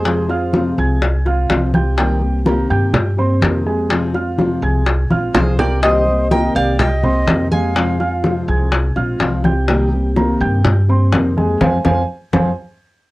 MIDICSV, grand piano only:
0, 0, Header, 1, 2, 480
1, 0, Start_track
1, 0, Tempo, 481541
1, 55, Time_signature, 4, 2, 24, 8
1, 13069, End_track
2, 0, Start_track
2, 0, Title_t, "Grand piano"
2, 0, Program_c, 0, 0
2, 0, Note_on_c, 0, 56, 81
2, 0, Note_on_c, 0, 68, 84
2, 0, Note_on_c, 0, 80, 84
2, 208, Note_off_c, 0, 56, 0
2, 210, Note_off_c, 0, 68, 0
2, 212, Note_off_c, 0, 80, 0
2, 296, Note_on_c, 0, 65, 79
2, 299, Note_on_c, 0, 77, 85
2, 302, Note_on_c, 0, 89, 80
2, 688, Note_off_c, 0, 65, 0
2, 690, Note_off_c, 0, 77, 0
2, 692, Note_off_c, 0, 89, 0
2, 777, Note_on_c, 0, 68, 68
2, 780, Note_on_c, 0, 80, 74
2, 785, Note_on_c, 0, 92, 82
2, 1169, Note_off_c, 0, 68, 0
2, 1171, Note_off_c, 0, 80, 0
2, 1173, Note_off_c, 0, 92, 0
2, 1260, Note_on_c, 0, 65, 87
2, 1262, Note_on_c, 0, 77, 79
2, 1265, Note_on_c, 0, 89, 76
2, 1651, Note_off_c, 0, 65, 0
2, 1652, Note_off_c, 0, 77, 0
2, 1653, Note_off_c, 0, 89, 0
2, 1735, Note_on_c, 0, 67, 69
2, 1740, Note_on_c, 0, 79, 71
2, 1742, Note_on_c, 0, 91, 74
2, 1931, Note_off_c, 0, 67, 0
2, 1933, Note_off_c, 0, 79, 0
2, 1935, Note_off_c, 0, 91, 0
2, 1977, Note_on_c, 0, 55, 65
2, 1980, Note_on_c, 0, 67, 79
2, 1983, Note_on_c, 0, 79, 79
2, 2368, Note_off_c, 0, 55, 0
2, 2370, Note_off_c, 0, 67, 0
2, 2372, Note_off_c, 0, 79, 0
2, 2454, Note_on_c, 0, 58, 73
2, 2456, Note_on_c, 0, 70, 76
2, 2459, Note_on_c, 0, 82, 69
2, 2650, Note_off_c, 0, 58, 0
2, 2651, Note_off_c, 0, 70, 0
2, 2653, Note_off_c, 0, 82, 0
2, 2691, Note_on_c, 0, 67, 80
2, 2693, Note_on_c, 0, 79, 83
2, 2698, Note_on_c, 0, 91, 71
2, 3085, Note_off_c, 0, 67, 0
2, 3086, Note_off_c, 0, 79, 0
2, 3089, Note_off_c, 0, 91, 0
2, 3171, Note_on_c, 0, 60, 86
2, 3174, Note_on_c, 0, 72, 91
2, 3178, Note_on_c, 0, 84, 85
2, 3565, Note_off_c, 0, 60, 0
2, 3566, Note_off_c, 0, 72, 0
2, 3569, Note_off_c, 0, 84, 0
2, 3649, Note_on_c, 0, 56, 79
2, 3651, Note_on_c, 0, 68, 80
2, 3655, Note_on_c, 0, 80, 82
2, 4044, Note_off_c, 0, 56, 0
2, 4045, Note_off_c, 0, 68, 0
2, 4047, Note_off_c, 0, 80, 0
2, 4129, Note_on_c, 0, 65, 79
2, 4133, Note_on_c, 0, 77, 75
2, 4137, Note_on_c, 0, 89, 72
2, 4523, Note_off_c, 0, 65, 0
2, 4526, Note_off_c, 0, 77, 0
2, 4528, Note_off_c, 0, 89, 0
2, 4609, Note_on_c, 0, 68, 73
2, 4613, Note_on_c, 0, 80, 75
2, 4617, Note_on_c, 0, 92, 73
2, 5003, Note_off_c, 0, 68, 0
2, 5006, Note_off_c, 0, 80, 0
2, 5008, Note_off_c, 0, 92, 0
2, 5091, Note_on_c, 0, 65, 78
2, 5094, Note_on_c, 0, 77, 80
2, 5098, Note_on_c, 0, 89, 87
2, 5485, Note_off_c, 0, 65, 0
2, 5486, Note_off_c, 0, 77, 0
2, 5488, Note_off_c, 0, 89, 0
2, 5572, Note_on_c, 0, 67, 77
2, 5576, Note_on_c, 0, 79, 77
2, 5578, Note_on_c, 0, 91, 75
2, 5768, Note_off_c, 0, 67, 0
2, 5770, Note_off_c, 0, 79, 0
2, 5772, Note_off_c, 0, 91, 0
2, 5812, Note_on_c, 0, 55, 65
2, 5815, Note_on_c, 0, 67, 68
2, 5819, Note_on_c, 0, 79, 74
2, 6205, Note_off_c, 0, 55, 0
2, 6207, Note_off_c, 0, 67, 0
2, 6209, Note_off_c, 0, 79, 0
2, 6292, Note_on_c, 0, 58, 72
2, 6296, Note_on_c, 0, 70, 78
2, 6299, Note_on_c, 0, 82, 83
2, 6488, Note_off_c, 0, 58, 0
2, 6490, Note_off_c, 0, 70, 0
2, 6492, Note_off_c, 0, 82, 0
2, 6531, Note_on_c, 0, 67, 78
2, 6535, Note_on_c, 0, 79, 76
2, 6537, Note_on_c, 0, 91, 74
2, 6925, Note_off_c, 0, 67, 0
2, 6927, Note_off_c, 0, 79, 0
2, 6928, Note_off_c, 0, 91, 0
2, 7012, Note_on_c, 0, 60, 82
2, 7015, Note_on_c, 0, 72, 78
2, 7019, Note_on_c, 0, 84, 83
2, 7405, Note_off_c, 0, 60, 0
2, 7407, Note_off_c, 0, 72, 0
2, 7409, Note_off_c, 0, 84, 0
2, 7491, Note_on_c, 0, 56, 89
2, 7493, Note_on_c, 0, 68, 86
2, 7497, Note_on_c, 0, 80, 75
2, 7884, Note_off_c, 0, 56, 0
2, 7886, Note_off_c, 0, 68, 0
2, 7888, Note_off_c, 0, 80, 0
2, 7973, Note_on_c, 0, 65, 76
2, 7975, Note_on_c, 0, 77, 75
2, 7978, Note_on_c, 0, 89, 70
2, 8366, Note_off_c, 0, 65, 0
2, 8367, Note_off_c, 0, 77, 0
2, 8369, Note_off_c, 0, 89, 0
2, 8452, Note_on_c, 0, 68, 69
2, 8456, Note_on_c, 0, 80, 71
2, 8458, Note_on_c, 0, 92, 77
2, 8845, Note_off_c, 0, 68, 0
2, 8848, Note_off_c, 0, 80, 0
2, 8849, Note_off_c, 0, 92, 0
2, 8933, Note_on_c, 0, 65, 89
2, 8937, Note_on_c, 0, 77, 83
2, 8937, Note_on_c, 0, 89, 85
2, 9326, Note_off_c, 0, 65, 0
2, 9328, Note_off_c, 0, 77, 0
2, 9329, Note_off_c, 0, 89, 0
2, 9414, Note_on_c, 0, 67, 72
2, 9417, Note_on_c, 0, 79, 71
2, 9420, Note_on_c, 0, 91, 77
2, 9610, Note_off_c, 0, 67, 0
2, 9612, Note_off_c, 0, 79, 0
2, 9613, Note_off_c, 0, 91, 0
2, 9653, Note_on_c, 0, 55, 76
2, 9657, Note_on_c, 0, 67, 73
2, 9660, Note_on_c, 0, 79, 65
2, 10047, Note_off_c, 0, 55, 0
2, 10049, Note_off_c, 0, 67, 0
2, 10050, Note_off_c, 0, 79, 0
2, 10134, Note_on_c, 0, 58, 81
2, 10137, Note_on_c, 0, 70, 76
2, 10140, Note_on_c, 0, 82, 82
2, 10330, Note_off_c, 0, 58, 0
2, 10332, Note_off_c, 0, 70, 0
2, 10334, Note_off_c, 0, 82, 0
2, 10374, Note_on_c, 0, 67, 68
2, 10377, Note_on_c, 0, 79, 73
2, 10380, Note_on_c, 0, 91, 77
2, 10767, Note_off_c, 0, 67, 0
2, 10769, Note_off_c, 0, 79, 0
2, 10771, Note_off_c, 0, 91, 0
2, 10856, Note_on_c, 0, 60, 90
2, 10859, Note_on_c, 0, 72, 75
2, 10862, Note_on_c, 0, 84, 81
2, 11249, Note_off_c, 0, 60, 0
2, 11251, Note_off_c, 0, 72, 0
2, 11252, Note_off_c, 0, 84, 0
2, 11333, Note_on_c, 0, 56, 93
2, 11336, Note_on_c, 0, 68, 83
2, 11339, Note_on_c, 0, 80, 85
2, 11530, Note_off_c, 0, 56, 0
2, 11532, Note_off_c, 0, 68, 0
2, 11534, Note_off_c, 0, 80, 0
2, 11574, Note_on_c, 0, 80, 94
2, 11575, Note_on_c, 0, 72, 85
2, 11576, Note_on_c, 0, 77, 87
2, 11728, Note_off_c, 0, 72, 0
2, 11728, Note_off_c, 0, 80, 0
2, 11729, Note_off_c, 0, 77, 0
2, 11814, Note_on_c, 0, 72, 93
2, 11815, Note_on_c, 0, 77, 97
2, 11815, Note_on_c, 0, 80, 102
2, 11968, Note_off_c, 0, 72, 0
2, 11968, Note_off_c, 0, 77, 0
2, 11968, Note_off_c, 0, 80, 0
2, 12295, Note_on_c, 0, 80, 89
2, 12296, Note_on_c, 0, 72, 95
2, 12296, Note_on_c, 0, 77, 81
2, 12449, Note_off_c, 0, 72, 0
2, 12449, Note_off_c, 0, 77, 0
2, 12449, Note_off_c, 0, 80, 0
2, 13069, End_track
0, 0, End_of_file